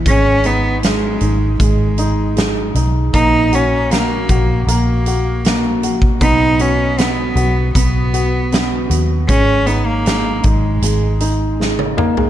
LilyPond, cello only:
\new Staff \with { instrumentName = "Cello" } { \time 4/4 \key gis \minor \tempo 4 = 78 cis'8 b8 gis4 gis4. r8 | dis'8 cis'8 ais4 ais4. r8 | dis'8 cis'8 b4 b4. r8 | cis'8 b16 ais8. gis4. r4 | }